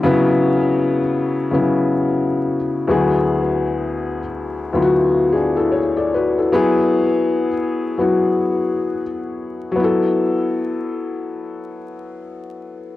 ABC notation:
X:1
M:4/4
L:1/16
Q:"Swing 16ths" 1/4=74
K:Bdor
V:1 name="Felt piano"
z16 | z8 z2 [DG] [EA] [Gc] [Ad] [FB] [EA]- | [EA] z12 z3 | z16 |]
V:2 name="Felt piano"
[C,F,B,E]4- [C,F,B,E] z2 [C,F,B,E]4- [C,F,B,E] z2 [D,,F,B,EG]2- | [D,,F,B,EG]4 z3 [D,,F,B,E^EF]4- [D,,F,B,=E^EF] z4 | [F,B,EG]4- [F,B,EG] z2 [F,B,EF]4- [F,B,EF] z4 | [F,B,EA]16 |]